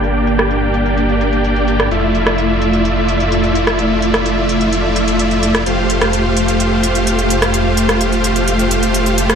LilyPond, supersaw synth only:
\new Staff \with { instrumentName = "Supersaw synth" } { \time 4/4 \key d \minor \tempo 4 = 128 <bes d' g' d'' g''>1 | <a e' f' d'' e''>1~ | <a e' f' d'' e''>1 | <a f' g' c'' f''>1~ |
<a f' g' c'' f''>1 | }